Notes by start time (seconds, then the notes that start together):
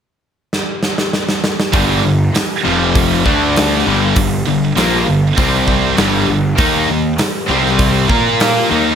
0.53 snare
0.83 snare
0.98 snare
1.13 snare
1.29 snare
1.44 snare
1.60 snare
1.73 G1 G2 D3 G3, kick, open hi-hat
2.03 G1 G2 D3
2.33 muted overdriven electric guitar stroke, muted distorted electric guitar stroke, muted picked electric bass stroke, snare, open hi-hat
2.63 F1 F2 C3 F3
2.95 kick, open hi-hat
3.24 D2 D3 A3 D4, kick
3.56 snare, open hi-hat
3.86 G1 G2 D3 G3
4.16 G1 G2 D3, kick, open hi-hat
4.47 G1 G2 D3
4.76 A#1 A#2 F3 A#3, snare, open hi-hat
5.07 G1 G2 D3
5.37 C2 C3 G3 C4, kick, open hi-hat
5.68 kick
5.97 G1 G2 D3 G3, snare, open hi-hat
6.28 G1 G2 D3
6.56 D#2 D#3 A#3 D#4, kick, open hi-hat
6.60 D#3 A#3 D#4
6.87 D#2 D#3
6.91 D#3 A#3
7.18 muted distorted electric guitar stroke, muted picked electric bass stroke, muted overdriven electric guitar stroke, snare, open hi-hat
7.50 C2 C3 G3 C4
7.66 snare
7.79 kick, open hi-hat
8.10 A#2 A#3 F4 A#4, kick
8.40 snare, open hi-hat
8.71 D#2 D#3 A#3 D#4